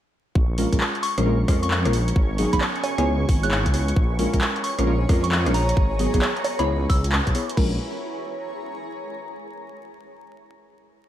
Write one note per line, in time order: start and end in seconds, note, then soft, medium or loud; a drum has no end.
0.35 0.66 A#1 loud
0.35 2.55 C#4 medium
0.35 7.58 C#6 medium
0.35 kick loud
0.58 0.70 G#3 medium
0.58 0.70 C#4 medium
0.58 0.70 F4 medium
0.58 0.70 A#4 medium
0.58 open hi-hat loud
0.73 0.78 A#1 loud
0.73 1.14 G#3 medium
0.73 1.14 C#4 medium
0.73 1.14 F4 medium
0.73 1.14 A#4 medium
0.73 2.16 A#4 medium
0.73 kick medium
0.73 closed hi-hat medium
0.80 clap loud
0.95 closed hi-hat soft
1.03 1.19 C#6 loud
1.03 open hi-hat loud
1.18 1.45 A#1 loud
1.18 1.22 G#3 medium
1.18 1.22 C#4 medium
1.18 1.23 F4 medium
1.18 1.23 A#4 medium
1.18 3.45 G#5 medium
1.18 cross-stick medium
1.18 closed hi-hat medium
1.26 1.46 G#3 medium
1.26 1.46 C#4 medium
1.26 1.46 F4 medium
1.26 1.46 A#4 medium
1.48 1.87 F2 medium
1.48 1.82 G#3 loud
1.48 1.82 C#4 medium
1.48 1.82 F4 medium
1.48 1.82 A#4 loud
1.48 kick loud
1.48 cross-stick medium
1.48 open hi-hat loud
1.62 1.68 C#6 medium
1.62 closed hi-hat medium
1.70 1.80 C#6 medium
1.70 clap loud
1.85 2.12 A#1 medium
1.85 1.90 G#3 medium
1.85 1.90 C#4 medium
1.85 1.90 F4 medium
1.85 1.90 A#4 medium
1.85 cross-stick medium
1.85 closed hi-hat medium
1.93 open hi-hat loud
2.08 closed hi-hat medium
2.16 2.47 G#1 loud
2.16 3.45 F#4 medium
2.16 kick loud
2.38 2.51 F#3 medium
2.38 2.51 B3 medium
2.38 2.51 D#4 medium
2.38 2.51 G#4 medium
2.38 open hi-hat loud
2.53 2.59 G#1 medium
2.53 2.58 F#3 loud
2.53 2.58 B3 medium
2.53 2.58 D#4 medium
2.53 2.58 G#4 loud
2.53 2.64 B5 medium
2.53 kick medium
2.53 closed hi-hat medium
2.61 clap loud
2.61 high bongo medium
2.76 closed hi-hat soft
2.83 2.93 G#5 medium
2.83 open hi-hat loud
2.83 high bongo medium
2.98 3.25 C#2 loud
2.98 3.40 B3 loud
2.98 3.40 E4 medium
2.98 3.40 G#4 medium
2.98 3.40 C#5 loud
2.98 3.03 G#5 medium
2.98 cross-stick medium
2.98 closed hi-hat medium
3.29 3.67 G#1 medium
3.29 kick loud
3.29 open hi-hat loud
3.36 6.16 C#5 medium
3.43 3.72 B3 medium
3.43 3.72 E4 medium
3.43 3.72 G#4 medium
3.43 3.72 C#5 loud
3.43 3.74 F#6 medium
3.43 closed hi-hat medium
3.51 clap loud
3.66 3.93 C#2 medium
3.66 kick medium
3.66 closed hi-hat medium
3.74 3.83 B3 medium
3.74 3.83 E4 medium
3.74 3.83 G#4 medium
3.74 3.83 C#5 medium
3.74 cross-stick soft
3.74 open hi-hat loud
3.88 closed hi-hat medium
3.96 4.27 A#1 loud
3.96 6.16 G#4 medium
3.96 kick loud
4.19 4.31 G#3 medium
4.19 4.31 C#4 medium
4.19 4.31 F4 medium
4.19 4.31 A#4 medium
4.19 open hi-hat loud
4.34 4.39 A#1 loud
4.34 4.75 G#3 medium
4.34 4.75 C#4 medium
4.34 4.75 F4 medium
4.34 4.75 A#4 medium
4.34 kick medium
4.34 closed hi-hat medium
4.41 clap loud
4.49 6.16 A#5 medium
4.56 closed hi-hat soft
4.64 4.80 C#6 loud
4.64 open hi-hat loud
4.79 5.06 A#1 loud
4.79 4.83 G#3 medium
4.79 4.83 C#4 medium
4.79 4.83 F4 medium
4.79 4.83 A#4 medium
4.79 cross-stick medium
4.79 closed hi-hat medium
4.87 5.07 G#3 medium
4.87 5.07 C#4 medium
4.87 5.07 F4 medium
4.87 5.07 A#4 loud
5.09 5.48 F2 medium
5.09 5.43 G#3 loud
5.09 5.43 C#4 medium
5.09 5.43 F4 medium
5.09 5.43 A#4 loud
5.09 kick loud
5.09 cross-stick medium
5.09 open hi-hat loud
5.23 5.29 C#6 medium
5.23 closed hi-hat medium
5.31 5.41 C#6 medium
5.31 clap loud
5.46 5.73 A#1 medium
5.46 5.51 G#3 medium
5.46 5.51 C#4 medium
5.46 5.51 F4 medium
5.46 5.51 A#4 medium
5.46 cross-stick medium
5.46 closed hi-hat medium
5.54 5.71 A#5 loud
5.54 open hi-hat loud
5.69 closed hi-hat medium
5.77 6.07 G#1 loud
5.77 7.06 F#4 medium
5.77 kick loud
5.85 7.06 B4 medium
5.99 6.12 F#3 medium
5.99 6.12 B3 medium
5.99 6.12 D#4 medium
5.99 6.12 G#4 medium
5.99 open hi-hat loud
6.14 6.20 G#1 loud
6.14 6.19 F#3 loud
6.14 6.19 B3 medium
6.14 6.19 D#4 medium
6.14 6.19 G#4 loud
6.14 kick medium
6.14 closed hi-hat medium
6.22 clap loud
6.22 high bongo medium
6.37 closed hi-hat soft
6.45 open hi-hat loud
6.45 high bongo medium
6.59 6.86 C#2 loud
6.59 7.01 B3 loud
6.59 7.01 E4 medium
6.59 7.01 G#4 medium
6.59 7.01 C#5 loud
6.59 6.71 B5 medium
6.59 cross-stick medium
6.59 closed hi-hat medium
6.89 7.20 C#2 medium
6.89 7.54 E6 medium
6.89 kick loud
6.89 open hi-hat loud
7.04 closed hi-hat medium
7.12 clap loud
7.27 7.32 B1 loud
7.27 kick medium
7.27 closed hi-hat medium
7.35 7.44 B3 medium
7.35 7.44 E4 medium
7.35 7.44 G#4 medium
7.35 7.44 C#5 medium
7.35 cross-stick soft
7.35 open hi-hat loud
7.49 closed hi-hat medium
7.57 7.78 A#1 loud
7.57 7.75 G#3 medium
7.57 7.75 C#4 medium
7.57 7.75 F4 medium
7.57 9.34 G#4 medium
7.57 7.75 A#4 loud
7.57 kick loud
7.57 crash medium
7.66 9.34 C#5 medium
7.73 9.34 A#5 medium